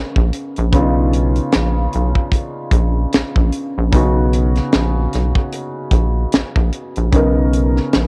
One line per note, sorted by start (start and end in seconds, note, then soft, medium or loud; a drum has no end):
0.00 0.68 C#3 medium
0.00 0.68 B3 medium
0.00 0.69 C#4 medium
0.00 0.69 D#4 medium
0.00 0.70 A#4 medium
0.16 0.31 A#1 medium
0.16 kick loud
0.33 closed hi-hat medium
0.56 0.72 A#1 loud
0.56 closed hi-hat soft
0.72 1.40 B1 loud
0.72 3.88 C#3 medium
0.72 3.89 B3 medium
0.72 3.89 C#4 medium
0.72 0.81 D4 medium
0.72 3.90 F4 medium
0.72 kick loud
0.72 closed hi-hat medium
0.81 3.93 D#4 medium
1.13 closed hi-hat medium
1.36 closed hi-hat soft
1.52 1.88 A#1 medium
1.52 snare loud
1.52 closed hi-hat medium
1.93 2.13 B1 medium
1.93 closed hi-hat medium
2.15 kick medium
2.32 kick medium
2.32 closed hi-hat medium
2.71 3.06 A#1 medium
2.71 kick medium
2.71 closed hi-hat medium
3.12 3.23 A#1 soft
3.12 snare loud
3.12 closed hi-hat medium
3.36 3.51 A#1 medium
3.36 kick medium
3.52 closed hi-hat medium
3.78 3.91 A#1 medium
3.91 4.60 B1 loud
3.91 7.08 C#3 medium
3.91 7.09 B3 medium
3.91 7.09 C#4 medium
3.91 7.10 D#4 medium
3.91 7.10 F#4 medium
3.91 kick loud
3.91 closed hi-hat medium
4.33 closed hi-hat medium
4.55 snare soft
4.55 closed hi-hat soft
4.72 5.07 A#1 loud
4.72 snare loud
4.72 closed hi-hat medium
5.13 5.33 B1 medium
5.13 snare soft
5.13 closed hi-hat medium
5.35 kick loud
5.52 closed hi-hat medium
5.91 6.26 A#1 medium
5.91 kick loud
5.91 closed hi-hat medium
6.32 6.44 A#1 soft
6.32 snare loud
6.32 closed hi-hat medium
6.56 6.71 A#1 medium
6.56 kick medium
6.72 closed hi-hat medium
6.95 7.11 A#1 medium
6.95 closed hi-hat soft
7.11 7.80 B1 loud
7.11 8.07 C#3 medium
7.11 8.07 B3 medium
7.11 8.07 C#4 medium
7.11 8.07 D#4 medium
7.11 8.07 A#4 medium
7.11 kick loud
7.11 closed hi-hat medium
7.53 closed hi-hat medium
7.77 snare soft
7.93 8.07 A#1 loud
7.93 snare loud
7.93 closed hi-hat medium